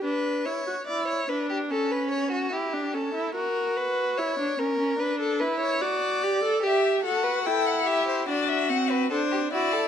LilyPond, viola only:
\new Staff \with { instrumentName = "Viola" } { \time 4/4 \key b \phrygian \tempo 4 = 73 d'8 e'16 fis'16 e'8 d'8 cis'4 e'16 d'16 cis'16 e'16 | fis'4 e'16 d'16 cis'16 cis'16 d'8 e'8 fis'8 g'16 a'16 | g'8 fis'8 e'4 d'8 c'8 d'8 e'8 | }